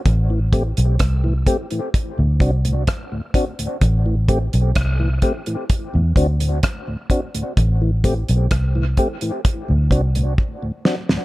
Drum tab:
HH |x-xxx-xxx-xxx-xx|x-xxx-xxx-xxx-xx|x-xxx-xxx-xx----|
SD |----r-------r---|----r-------r---|----r---------oo|
BD |o-o-o-o-o-o-o-o-|o-o-o-o-o-o-o-o-|o-o-o-o-o-o-o---|